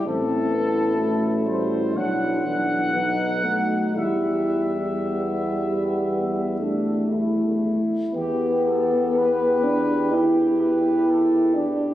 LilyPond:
<<
  \new Staff \with { instrumentName = "Trumpet section" } { \time 4/4 \key e \minor \tempo 4 = 60 a'4. c''8 fis''2 | e''2. r4 | g'8 a'8 b'4 g'8 b'8 a'8 g'8 | }
  \new Staff \with { instrumentName = "French horn section" } { \time 4/4 \key e \minor c'8 e'8 fis'4 e'8 d'8 dis'8 fis'8 | g'2.~ g'8 r8 | b'1 | }
  \new Staff \with { instrumentName = "Trombone section" } { \time 4/4 \key e \minor e'2 d'4 dis'4 | e'4 b4. d'8 e'4 | g'1 | }
  \new Staff \with { instrumentName = "Euphonium" } { \time 4/4 \key e \minor c'8 b8 a8 g8 fis8 e8 b8 a8 | g2~ g8 a4. | b4. d'8 e'4. d'8 | }
  \new Staff \with { instrumentName = "Tuba" } { \clef bass \time 4/4 \key e \minor a,,2 b,,2 | e,2.~ e,8 r8 | e,1 | }
>>